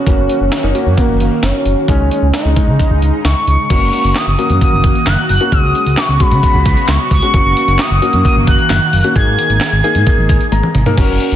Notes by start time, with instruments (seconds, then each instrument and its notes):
Already playing: analog synth lead C#4, analog synth pad F#4
0.07 analog synth bass F#1, analog synth pad D#3 A#3, grand piano A#3 C#4 F#4, kick, closed hi-hat
0.18 analog synth bass F#1
0.30 closed hi-hat
0.41 analog synth bass F#1
0.52 snare, closed hi-hat
0.63 analog synth bass F#1, grand piano A#3 C#4 D#4
0.75 grand piano A#3 C#4 F#4, closed hi-hat
0.86 analog synth bass F#2
0.98 analog synth lead A#3, kick, closed hi-hat
1.09 analog synth bass F#1
1.20 analog synth bass F#1, analog synth lead A#3, closed hi-hat
1.43 analog synth bass F#1, analog synth lead C#4, snare, closed hi-hat
1.66 analog synth bass F#1, closed hi-hat
1.88 analog synth bass C#2, analog synth pad C#3 G#3 D#4, grand piano G#3 C#4 D#4, analog synth lead C#4, kick, closed hi-hat
2.00 analog synth bass C#2
2.11 analog synth lead C#4, closed hi-hat
2.22 analog synth bass C#2
2.34 analog synth lead D#4, snare, closed hi-hat
2.45 analog synth bass C#2, grand piano G#3 C#4 D#4
2.56 grand piano G#3 C#4 D#4, kick, closed hi-hat
2.68 analog synth bass C#3
2.79 kick, closed hi-hat
2.91 analog synth bass C#2
3.02 analog synth bass C#2, closed hi-hat
3.25 analog synth bass C#2, analog synth lead C#6, snare, closed hi-hat
3.47 analog synth bass C#2, analog synth lead C#6, closed hi-hat
3.70 analog synth bass F#1, analog synth pad D#3 A#3 F#4, grand piano A#3 C#4 F#4, kick, closed hi-hat, crash
3.81 analog synth bass F#1
3.93 closed hi-hat
4.04 analog synth bass F#1, closed hi-hat
4.16 analog synth lead D#6, snare, clap, closed hi-hat
4.27 analog synth bass F#1
4.38 grand piano A#3 C#4 F#4, closed hi-hat
4.50 analog synth bass F#2, closed hi-hat
4.61 analog synth lead D#6, kick, closed hi-hat
4.72 analog synth bass F#1
4.84 analog synth bass F#1, kick, closed hi-hat
4.95 closed hi-hat
5.07 analog synth bass F#1, analog synth lead F#6, snare, clap, closed hi-hat
5.29 analog synth bass F#1, analog synth lead F#6, open hi-hat
5.41 grand piano A#3 C#4 F#4, closed hi-hat
5.52 analog synth bass C#2, analog synth pad C#3 B3, grand piano G#3 C#4 F#4, analog synth lead D#6, kick, closed hi-hat
5.64 analog synth bass C#2
5.75 closed hi-hat
5.86 analog synth bass C#2, closed hi-hat
5.97 analog synth lead C#6, snare, clap, closed hi-hat
6.09 analog synth bass C#2
6.20 grand piano G#3 C#4 F#4, analog synth lead B5, kick, closed hi-hat
6.32 analog synth bass C#3, closed hi-hat
6.43 kick, closed hi-hat
6.54 analog synth bass C#2
6.66 analog synth bass C#2, kick, closed hi-hat
6.77 closed hi-hat
6.88 analog synth bass C#2, analog synth lead C#6, snare, clap, closed hi-hat
7.11 analog synth bass C#2, analog synth lead C#6, kick, open hi-hat
7.22 grand piano G#3 C#4 F#4, closed hi-hat
7.34 analog synth bass F#1, analog synth pad D#3 A#3, grand piano A#3 C#4 F#4, kick, closed hi-hat
7.45 analog synth bass F#1
7.57 closed hi-hat
7.68 analog synth bass F#1, closed hi-hat
7.79 analog synth lead D#6, snare, clap, closed hi-hat
7.91 analog synth bass F#1
8.02 grand piano A#3 C#4 F#4, closed hi-hat
8.13 analog synth bass F#2, closed hi-hat
8.25 analog synth lead D#6, kick, closed hi-hat
8.36 analog synth bass F#1
8.47 analog synth bass F#1, analog synth lead F#6, kick, closed hi-hat
8.59 closed hi-hat
8.70 analog synth bass F#1, snare, clap, closed hi-hat
8.93 analog synth bass F#1, open hi-hat
9.04 grand piano A#3 C#4 F#4, closed hi-hat
9.15 analog synth bass G#1, grand piano A#3 D#4 G#4, analog synth pad G#4, analog synth lead G#6, kick, closed hi-hat
9.27 analog synth bass G#1
9.39 closed hi-hat
9.50 analog synth bass G#1, closed hi-hat
9.61 snare, clap, closed hi-hat
9.73 analog synth bass G#1
9.84 grand piano A#3 D#4 G#4, closed hi-hat
9.95 analog synth bass G#2, closed hi-hat
10.07 kick, closed hi-hat
10.18 analog synth bass G#1
10.29 analog synth bass G#1, kick, closed hi-hat
10.41 closed hi-hat
10.52 analog synth bass G#1, grand piano A#5, closed hi-hat, high tom
10.63 mid tom
10.75 analog synth bass G#1, closed hi-hat, mid tom
10.86 grand piano A#3 D#4 A#4, closed hi-hat, floor tom
10.98 analog synth bass F#1, grand piano C#4 F#4 A#4, kick, closed hi-hat, crash
11.09 analog synth bass F#1
11.21 closed hi-hat
11.32 analog synth bass F#1, closed hi-hat